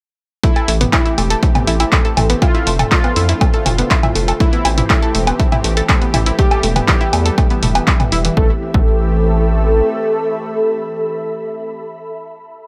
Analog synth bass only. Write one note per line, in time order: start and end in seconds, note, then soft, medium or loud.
0.68 0.86 A1 loud
1.18 1.36 E1 medium
1.67 1.85 A1 medium
2.17 2.35 A1 loud
2.67 2.84 F1 medium
3.16 3.34 F2 loud
3.66 3.83 F1 medium
4.15 4.33 F1 medium
4.65 4.83 A1 loud
5.15 5.32 E1 medium
5.64 5.82 A1 medium
6.14 6.32 A1 loud
6.63 6.81 E1 loud
7.13 7.31 E2 loud
7.63 7.80 E1 medium
8.12 8.30 E1 medium
8.37 8.51 A1 loud
8.74 9.82 A1 loud